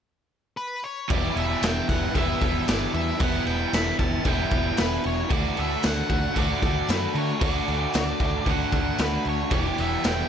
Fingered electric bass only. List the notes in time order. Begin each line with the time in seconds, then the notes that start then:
1.10 E1
1.36 E1
1.62 E1
1.89 E1
2.16 E1
2.42 E1
2.67 G1
2.94 E2
3.21 E1
3.46 E1
3.73 E1
3.99 E1
4.25 E1
4.52 E1
4.79 E1
5.05 E1
5.31 D2
5.58 D2
5.84 D2
6.09 D2
6.36 D2
6.63 D2
6.88 F#2
7.15 D3
7.42 D2
7.68 D2
7.95 D2
8.20 D2
8.46 D2
8.72 D2
8.99 D2
9.26 D2
9.51 E1
9.78 E1
10.04 E1